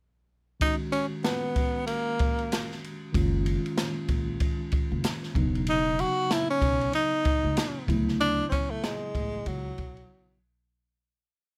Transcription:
0.60 D#3 G#3 C#4 D#4 F#4, kick, ride
0.92 C#4, ride
1.24 B3, snare, hi-hat pedal, ride
1.56 kick, ride
1.87 A#3, ride
2.19 kick, ride
2.39 ride
2.52 snare, hi-hat pedal, ride
2.71 snare
2.84 ride
3.12 F#1 D#3 G#3 C#4 F4, kick, ride
3.46 ride
3.66 ride
3.77 snare, hi-hat pedal, ride
4.08 A#1, kick, ride
4.40 kick, ride
4.72 kick, ride
4.92 F#1
5.04 snare, hi-hat pedal, ride
5.23 snare
5.34 E1 C#3 F#3 B3 D#4, kick, ride
5.55 ride
5.67 D#4, ride
5.99 F#4, ride
6.30 E4, snare, hi-hat pedal, ride
6.51 C#4
6.62 B1, kick, ride
6.81 ride
6.93 D#4, ride
7.25 kick, ride
7.44 C#2
7.57 snare, hi-hat pedal, ride
7.87 D2 C#3 F3 B3 E4, kick, ride
7.94 F#3
8.08 snare
8.20 D4, ride
8.49 C4 C#4, kick, ride
8.71 A3
8.83 G#3, snare, hi-hat pedal, ride
9.15 A1, kick, ride
9.46 C#2 F#3, kick, ride
9.78 B1, kick, ride
9.97 ride

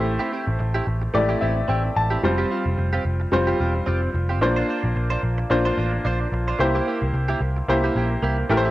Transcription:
Already playing: A1 A3 E4 G4 C5
0.04 muted clean electric guitar stroke
0.19 C4 E4 G4
0.32 C4 E4 G4
0.47 A1, muted clean electric guitar stroke
0.59 A1, muted clean electric guitar stroke
0.74 C4 E4 G4
0.87 A1, muted clean electric guitar stroke
1.02 muted clean electric guitar stroke
1.14 A1 A3 E4 G4 D5, muted clean electric guitar stroke
1.29 C4 E4 G4
1.41 A1 C4 E4 G4 E5
1.56 muted clean electric guitar stroke
1.68 A1 C4 E4 G4 G5
1.84 muted clean electric guitar stroke
1.96 A1 A5, muted clean electric guitar stroke
2.10 C4 E4 G4
2.23 F1 G3 C4 F4 C5
2.38 C4 F4 G4
2.50 C4 F4 G4
2.66 F1, muted clean electric guitar stroke
2.78 F1, muted clean electric guitar stroke
2.93 C4 F4 G4
3.05 F1, muted clean electric guitar stroke
3.20 muted clean electric guitar stroke
3.32 F1 G3 C4 F4 C5, muted clean electric guitar stroke
3.47 C4 F4 G4
3.59 E1 C4 F4 G4
3.75 muted clean electric guitar stroke
3.86 F1 C4 F4 G4
4.02 muted clean electric guitar stroke
4.14 F1, muted clean electric guitar stroke
4.29 C4 F4 G4
4.41 A#1 A#3 D4 F4 C5, muted clean electric guitar stroke
4.56 D4 F4 C5
4.69 D4 F4 C5
4.84 A#1, muted clean electric guitar stroke
4.96 A#1, muted clean electric guitar stroke
5.10 D4 F4 C5
5.23 A#1, muted clean electric guitar stroke
5.38 muted clean electric guitar stroke
5.50 A#1 A#3 D4 F4 C5, muted clean electric guitar stroke
5.65 D4 F4 C5
5.77 A1 D4 F4 C5
5.93 muted clean electric guitar stroke
6.05 A#1 D4 F4 C5
6.20 muted clean electric guitar stroke
6.32 A#1, muted clean electric guitar stroke
6.48 D4 F4 C5
6.59 C2 A#3 E4 G4 C5, muted clean electric guitar stroke
6.75 A#3 E4 G4
6.87 A#3 E4 G4
7.02 C2, muted clean electric guitar stroke
7.13 C2, muted clean electric guitar stroke
7.28 A#3 E4 G4
7.40 C2, muted clean electric guitar stroke
7.56 muted clean electric guitar stroke
7.68 C2 A#3 E4 G4 C5, muted clean electric guitar stroke
7.84 A#3 E4 G4
7.95 A#1 A#3 E4 G4
8.11 muted clean electric guitar stroke
8.22 C2 A#3 E4 G4
8.38 muted clean electric guitar stroke
8.49 A1 A3 E4 G4 A#4, muted clean electric guitar stroke
8.57 C5
8.65 C4 E4 G4

